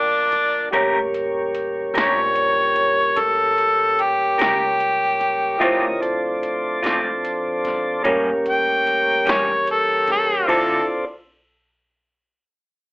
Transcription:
Already playing: upright bass G1, tonewheel organ F3 A#3 D4 A5, harmonica D4
0.32 kick, closed hi-hat
0.71 upright bass A1, tonewheel organ G3 A#3 C#4, clean electric guitar A3 C#4 G4 A#4, upright piano A#3 G4, kick, closed hi-hat
0.75 upright piano C#5
1.14 closed hi-hat
1.55 closed hi-hat
1.94 upright bass A#1, clean electric guitar A3 C#4 G4 A#4, snare, closed hi-hat
2.01 harmonica C#5
2.36 closed hi-hat
2.76 kick, closed hi-hat
3.17 upright bass A1, harmonica A4, kick, closed hi-hat
3.58 closed hi-hat
3.99 harmonica G4, closed hi-hat
4.38 upright bass C#2, clean electric guitar A3 C#4 G4 A#4, harmonica G4, snare, closed hi-hat
4.80 closed hi-hat
5.20 kick, closed hi-hat
5.58 upright bass D2, clean electric guitar D3 A3 C4 F4, tonewheel organ F3 C#4 A#4 D#5, upright piano E4 F4, kick, closed hi-hat
5.62 upright piano C5
6.00 tonewheel organ F3 C4 D4 A4, closed hi-hat
6.43 closed hi-hat
6.83 upright bass F2, clean electric guitar D3 A3 C4 F4, snare, closed hi-hat
7.25 closed hi-hat
7.64 kick, snare, closed hi-hat
8.03 clean electric guitar A2 G3 A#3 C#4, upright bass A2, tonewheel organ G3 A#3 C#4, upright piano A#3 C#4 G4, kick, closed hi-hat
8.46 closed hi-hat
8.50 harmonica G5
8.87 closed hi-hat
9.25 upright bass E2, clean electric guitar A2 G3 A#3 C#4, snare, closed hi-hat
9.31 harmonica C#5
9.67 harmonica A4, closed hi-hat
10.07 kick, snare, closed hi-hat
10.12 harmonica A4
10.47 upright bass D2, clean electric guitar D3 C4 F4 A4, tonewheel organ F3 C4 D4 A4, upright piano E4 F4 C5, harmonica A4, kick, crash

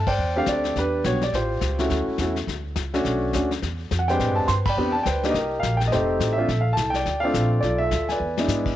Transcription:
Already playing: upright bass G2
0.07 grand piano C5 D5 G5, kick, crash
0.18 upright bass E2, brush sweep
0.36 grand piano A3 C4 D4 G4 F5
0.46 upright bass D2, grand piano G4 A4 D5, kick, snare, hi-hat pedal
0.64 snare
0.76 upright bass E2, grand piano D4 G4 B4, brush sweep, kick, snare
1.04 upright bass B1, grand piano G3 B3 D4 F#4 C#5, kick, snare, hi-hat pedal
1.21 grand piano D5, snare
1.33 upright bass A1, grand piano F4 G4 C5, brush sweep, kick, snare
1.61 upright bass C#2, kick, snare, hi-hat pedal
1.79 grand piano A3 C#4 E4 F#4, snare
1.90 upright bass D2, brush sweep, kick, snare
2.08 muted upright bass stroke
2.18 upright bass E2, grand piano A3 C#4 E4 F#4, kick, snare, hi-hat pedal
2.36 snare
2.47 upright bass D2, brush sweep, kick, snare
2.76 upright bass C#2, kick, snare, hi-hat pedal
2.94 grand piano A3 C#4 D4 F#4, snare
3.05 upright bass B1, brush sweep, kick, snare
3.33 upright bass D2, grand piano A3 C#4 D4 F#4, kick, snare, hi-hat pedal
3.51 snare
3.62 upright bass E2, brush sweep, kick, snare
3.91 upright bass F2, kick, snare, hi-hat pedal
3.99 grand piano F#5
4.08 grand piano G#3 C4 D4 G4 B4 C5 G5, snare
4.19 upright bass A2, brush sweep, kick, snare
4.29 upright bass G2
4.35 upright bass E2, grand piano A5
4.48 upright bass G2, grand piano C6, kick, snare, hi-hat pedal
4.65 grand piano G5 B5, kick, crash
4.70 grand piano D5
4.77 upright bass E2, grand piano B3 C4 D4 G4, brush sweep
4.92 grand piano A5
5.03 upright bass D2, grand piano B4 C5 G5, kick, snare, hi-hat pedal
5.23 grand piano A#3 D4 D#4 G4, snare
5.31 upright bass C2, grand piano D#5, brush sweep, kick, snare
5.35 grand piano G4 A#4
5.60 upright bass A#1, grand piano F5, kick, snare, hi-hat pedal
5.77 grand piano G5, snare
5.88 upright bass F1, grand piano D#5, kick
5.92 grand piano A3 C4 D#4 G4 A4 C5, brush sweep, snare
6.20 upright bass A1, kick, snare, hi-hat pedal
6.33 grand piano E5
6.38 grand piano A3 C4 D4 F4 A4
6.48 upright bass A#1, brush sweep, kick, snare
6.61 grand piano F5
6.73 grand piano A5
6.77 upright bass C2, kick, snare, hi-hat pedal
6.90 grand piano G5, snare
6.95 grand piano D5
7.06 upright bass D2, brush sweep, kick, snare
7.20 grand piano A3 C4 F5
7.24 grand piano D4 F4 A4 D5
7.34 upright bass A#1, kick, snare, hi-hat pedal
7.61 upright bass B1, grand piano F4 A4 D5, brush sweep, kick, snare
7.78 grand piano A4 E5
7.91 upright bass D2, kick, snare, hi-hat pedal
8.09 grand piano B4 D5 G#5, snare
8.20 upright bass E2
8.38 grand piano G#3 B3 D4 E4, snare
8.48 upright bass G#2, snare, hi-hat pedal
8.66 kick, crash

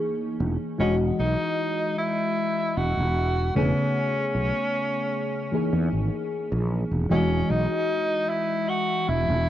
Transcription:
Already playing: fm electric piano E3 A#3 D#4 G#4
0.40 fretless electric bass E1
0.78 fretless electric bass E1, fm electric piano E3 G#3 F#4 D#5, tenor saxophone C#4
1.19 fretless electric bass B1, tenor saxophone D#4
1.98 tenor saxophone E4
2.77 fretless electric bass E1, tenor saxophone F#4
2.97 fretless electric bass E1
3.55 fretless electric bass E1, fm electric piano C#3 A3 B3 G#4, tenor saxophone C#4
4.35 fretless electric bass B1
5.52 fm electric piano E3 A#3 D#4 G#4
5.73 fretless electric bass E2
5.93 fretless electric bass G#1
6.52 fretless electric bass A#1
6.92 fretless electric bass E1
7.10 fretless electric bass E1, fm electric piano E3 G#3 F#4 D#5, tenor saxophone C#4
7.50 fretless electric bass B1, tenor saxophone D#4
8.29 tenor saxophone E4
8.69 tenor saxophone F#4
9.08 fretless electric bass E1, tenor saxophone E4
9.28 fretless electric bass E1

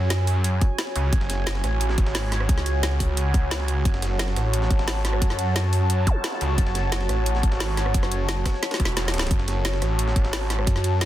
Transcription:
Already playing: detuned saw bass F#2, analog synth pad F#4 C#5 G#5
0.10 snare, closed hi-hat
0.27 closed hi-hat, open hi-hat
0.44 closed hi-hat
0.61 kick, closed hi-hat
0.78 snare, closed hi-hat
0.87 snare
0.96 detuned saw bass C#2, closed hi-hat
1.13 kick, closed hi-hat
1.21 snare
1.30 snare, closed hi-hat
1.47 snare, closed hi-hat
1.55 snare
1.64 detuned saw bass A1, cross-stick, snare, closed hi-hat
1.81 closed hi-hat
1.89 snare
1.98 detuned saw bass G#1, kick, closed hi-hat
2.06 snare
2.15 snare, closed hi-hat, open hi-hat
2.23 snare
2.32 snare, closed hi-hat
2.40 cross-stick
2.49 detuned saw bass C#2, kick, closed hi-hat
2.58 snare
2.66 detuned saw bass C#2, closed hi-hat
2.83 snare, closed hi-hat
3.00 kick, closed hi-hat, open hi-hat
3.17 closed hi-hat
3.34 kick, closed hi-hat
3.51 snare, closed hi-hat
3.60 snare
3.68 closed hi-hat
3.85 detuned saw bass F#1, analog synth pad A5, kick, closed hi-hat
3.94 snare
4.02 snare, closed hi-hat
4.19 snare, closed hi-hat
4.28 snare
4.36 detuned saw bass A1, cross-stick, snare, closed hi-hat
4.53 closed hi-hat
4.62 snare
4.71 kick, closed hi-hat
4.79 snare
4.88 snare, closed hi-hat, open hi-hat
4.96 snare
5.05 snare, closed hi-hat
5.13 cross-stick
5.22 detuned saw bass F#2, kick, closed hi-hat
5.30 snare
5.39 closed hi-hat
5.56 snare, closed hi-hat
5.73 closed hi-hat, open hi-hat
5.90 closed hi-hat
6.07 kick, closed hi-hat, zap
6.24 snare, closed hi-hat
6.32 snare
6.41 detuned saw bass C#2, closed hi-hat
6.58 detuned saw bass F#1, kick, closed hi-hat
6.67 snare
6.75 snare, closed hi-hat
6.92 snare, closed hi-hat
7.01 snare
7.09 detuned saw bass A1, cross-stick, snare, closed hi-hat
7.26 closed hi-hat
7.35 snare
7.43 detuned saw bass G#1, kick, closed hi-hat
7.52 snare
7.60 snare, closed hi-hat, open hi-hat
7.69 snare
7.77 snare, closed hi-hat
7.86 cross-stick
7.94 detuned saw bass F#1, kick, closed hi-hat
8.03 cross-stick, snare
8.11 closed hi-hat
8.29 snare, closed hi-hat
8.46 kick, cross-stick, snare, closed hi-hat, open hi-hat
8.54 snare
8.63 snare, closed hi-hat
8.71 snare, closed hi-hat
8.74 snare
8.80 detuned saw bass E1, kick, snare, closed hi-hat
8.85 snare, closed hi-hat
8.97 snare, closed hi-hat
9.05 snare
9.08 snare
9.14 snare, closed hi-hat
9.18 snare, closed hi-hat
9.22 snare, closed hi-hat
9.27 snare, closed hi-hat
9.31 detuned saw bass F#1, analog synth pad A5, kick, closed hi-hat
9.39 snare
9.48 snare, closed hi-hat
9.65 snare, closed hi-hat
9.73 snare
9.82 detuned saw bass A1, cross-stick, snare, closed hi-hat
9.99 closed hi-hat
10.08 snare
10.16 kick, closed hi-hat
10.25 snare
10.33 snare, closed hi-hat, open hi-hat
10.42 snare
10.50 snare, closed hi-hat
10.59 cross-stick
10.67 detuned saw bass F#2, kick, closed hi-hat
10.76 snare
10.84 closed hi-hat
11.01 snare, closed hi-hat

